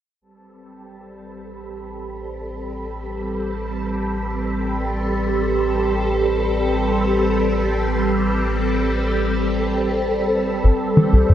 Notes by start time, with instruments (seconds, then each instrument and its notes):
0.21 sub bass A1, string machine G3 C4 A4, synth texture B4
10.64 analog synth bass A1, string machine G3 C4 A4, synth texture B4
10.97 analog synth bass E3
11.13 analog synth bass C2
11.30 analog synth bass G2